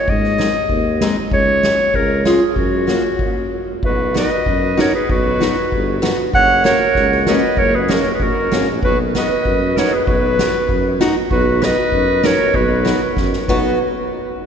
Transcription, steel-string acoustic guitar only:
0.38 G#3 C4 D#4
1.01 G#3 C4 D#4
1.63 G#3 C#4 F#4
2.25 G#3 C#4 F4
2.87 A#3 C#4 F#4
4.14 B3 D#4 F#4
4.77 B3 D#4 F#4
5.41 B3 D#4 F#4
6.02 B3 D#4 F#4
6.64 A#3 C#4 F#4
7.27 A#3 C#4 F#4
7.88 A#3 C#4 F#4
8.52 A#3 C#4 F#4
9.15 B3 D#4 F#4
9.78 B3 D#4 F#4
10.39 B3 D#4 F#4
11.01 B3 D#4 F#4
11.62 B3 D#4 F#4
12.23 B3 D#4 F#4
12.85 B3 D#4 F#4
13.49 B3 D#4 F#4

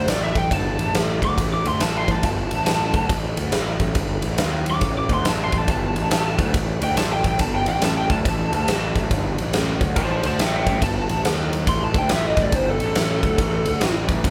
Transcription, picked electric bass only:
0.07 A1
0.35 A1
0.51 G1
0.79 A1
0.94 A1
1.23 D2
1.38 A1
1.65 D2
1.81 A1
2.08 A1
2.24 G1
2.52 A1
2.68 A1
2.94 D2
3.09 A1
3.37 D2
3.52 A1
3.80 A1
3.95 G1
4.23 A1
4.39 D#2
4.81 A1
5.10 D2
5.25 A1
5.53 A1
5.68 G1
5.95 A1
6.12 A1
6.38 D2
6.54 A1
6.81 D2
6.96 A1
7.24 A1
7.40 G1
7.67 A1
7.81 A1
8.10 D2
8.26 A1
8.52 D2
8.67 A1
8.95 A1
9.11 G1
9.39 A1
9.54 A1
9.81 D2
9.97 A1
10.24 D2
10.40 A1
10.66 A1
10.82 G1
11.10 A1
11.25 D#2
11.67 A1
11.95 D2
12.11 A1
12.37 A1
12.53 G1
12.81 A1
12.96 A1
13.23 D2
13.38 A1
13.66 D2
13.82 A1
14.09 A1
14.24 G1

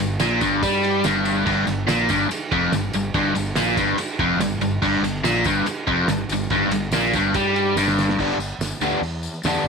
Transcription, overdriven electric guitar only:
0.00 G2
0.20 A#2
0.41 G2
0.63 G3
1.05 G2
1.46 G2
1.67 G2
1.87 A#2
2.10 G2
2.29 muted overdriven electric guitar stroke
2.52 F2
2.74 G2
2.95 G2
3.15 G2
3.35 G2
3.56 A#2
3.77 G2
3.99 muted overdriven electric guitar stroke
4.20 F2
4.41 G2
4.62 G2
4.82 G2
5.04 G2
5.24 A#2
5.46 G2
5.67 muted overdriven electric guitar stroke
5.87 F2
6.09 G2
6.32 G2
6.51 G2
6.72 G2
6.93 A#2
7.15 G2
7.36 G3
7.77 G2
8.19 G2 D3 G3 B3 D4
8.82 G2 D3 G3 B3 D4
9.45 G2 D3 G3 B3 D4

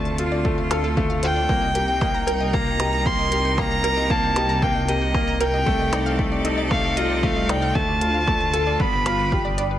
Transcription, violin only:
Already playing: A5
1.24 G5
2.54 A#5
3.06 C6
3.59 A#5
4.11 A5
4.63 G5
4.88 D#5
5.40 G5
6.71 F5
6.97 D#5
7.23 F5
7.49 G5
7.75 A5
8.80 B5

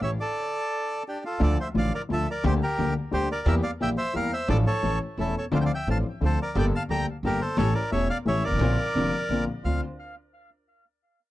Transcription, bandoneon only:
0.02 C#5 E5
0.20 A4 D5
1.08 D4 G4
1.25 F4 A4
1.42 A4 D5
1.60 C5 E5
1.77 D5 F5
1.95 A#4 D5
2.13 A4 E5
2.31 A#4 D5
2.46 G4 C5
2.63 G4 A#4
3.14 G4 C5
3.32 A#4 D5
3.47 A#4 E5
3.63 D5 F5
3.82 E5 G5
3.98 C5 E5
4.16 A#4 F5
4.33 C5 E5
4.50 A4 D5
4.67 A4 C#5
5.20 E4 A4
5.38 A4 C#5
5.55 D5 F5
5.61 G5
5.66 D5 F5
5.75 E5 G5
5.91 F5 A5
6.25 A4 C5
6.42 A#4 D5
6.58 D5 G5
6.75 F5 A5
6.90 G5 A#5
7.26 G4 A#4
7.41 A4 C5
7.58 A4 C#5
7.74 A#4 D5
7.92 C#5 E5
8.10 D5 F5
8.28 C#5 E5
8.44 A#4 D5
9.65 F5

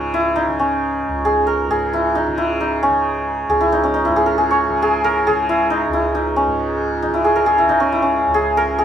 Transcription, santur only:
Already playing: C#4 D#4
0.14 E4
0.36 D#4
0.59 C#4
1.25 G#4
1.47 A#4
1.71 G#4
1.93 E4
2.15 D#4
2.38 E4
2.61 D#4
2.83 C#4
3.50 G#4
3.61 E4
3.72 D#4
3.84 C#4
3.94 D#4
4.05 E4
4.16 G#4
4.26 A#4
4.38 G#4
4.51 C#5
4.82 G#4
5.04 A#4
5.27 G#4
5.49 E4
5.70 D#4
5.93 E4
6.15 D#4
6.36 C#4
7.02 D#4
7.14 E4
7.24 G#4
7.36 A#4
7.46 G#4
7.58 E4
7.69 D#4
7.80 C#4
7.92 E4
8.02 C#4
8.34 G#4
8.57 A#4
8.79 G#4

